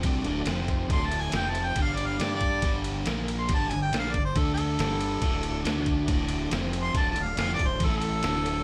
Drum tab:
RD |xxxxxxxx|xxxxxxxx|xxxxxxxx|xxxxxxxx|
SD |--o---o-|--o---o-|--o---o-|--o---o-|
BD |o--oo---|o--oo---|o--oo---|o--oo---|

RD |xxxxxxxx|
SD |--o---o-|
BD |o--oo---|